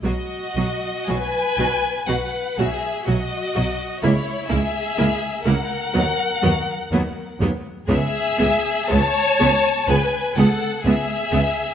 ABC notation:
X:1
M:4/4
L:1/8
Q:1/4=62
K:Bmix
V:1 name="Violin section"
d2 g2 f e d2 | c e2 f4 z | e2 a2 g f e2 |]
V:2 name="Violin section"
F2 B2 B G F2 | E G2 ^A4 z | G2 c2 B A G2 |]
V:3 name="Viola section"
[F,F] [F,F] [F,F] [F,F] [F,F] [F,F] [F,F] [F,F] | [^A,E] [A,E] [A,E] [A,E] [F,B,] [F,B,] [F,B,] [F,B,] | [G,B,] [G,B,] [G,B,] [G,B,] [G,B,] [G,B,] [G,B,] [G,B,] |]
V:4 name="Cello section" clef=bass
B,, B,, B,, B,, B,, B,, B,, B,, | C,, C,, C,, C,, D,, D,, D,, D,, | C,, C,, C,, C,, C,, C,, C,, C,, |]
V:5 name="Double bass section" clef=bass
B,,, B,,, B,,, B,,, B,,, B,,, B,,, B,,, | C,, C,, C,, C,, D,, D,, D,, D,, | C,, C,, C,, C,, C,, C,, C,, C,, |]